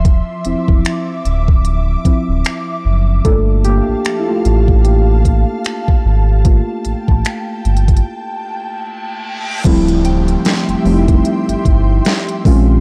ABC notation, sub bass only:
X:1
M:4/4
L:1/16
Q:"Swing 16ths" 1/4=75
K:Gdor
V:1 name="Sub bass" clef=bass
_E,,, z =E,,, E,,, z2 D,,,4 D,,, D,,, z2 ^F,,,2 | G,,,3 A,,, z2 A,,,4- A,,, z3 ^G,,,2- | ^G,,, z A,,, A,,, z2 =G,,,2 z8 | [K:Dm] D,,,4 z F,,, F,,,2 z G,,, G,,,2 z2 B,,,2 |]